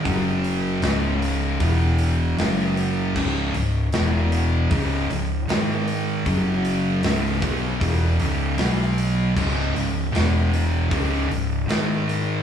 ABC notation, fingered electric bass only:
X:1
M:4/4
L:1/8
Q:1/4=77
K:C#m
V:1 name="Fingered electric bass" clef=bass
F,,,2 C,,,2 E,,,2 F,,,2 | C,,, C,,, E,,,2 C,,, C,,, G,,,2 | F,,,2 C,,, B,,, E,,, C,,, B,,,2 | C,,, C,,, E,,,2 C,,, C,,, G,,,2 |]